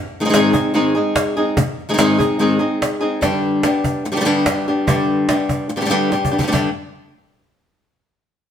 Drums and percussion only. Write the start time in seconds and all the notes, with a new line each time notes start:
0.34 cajon slap
0.54 cajon bass
0.74 cajon slap
1.16 cajon bass, cajon slap
1.57 cajon bass
1.78 cajon slap
1.99 cajon slap
2.20 cajon bass
2.82 cajon slap
3.22 cajon bass, cajon slap
3.63 cajon slap
3.84 cajon bass
4.46 cajon bass, cajon slap
4.88 cajon bass
5.29 cajon slap
5.49 cajon bass
6.12 cajon slap
6.25 cajon bass
6.39 cajon bass
6.54 cajon bass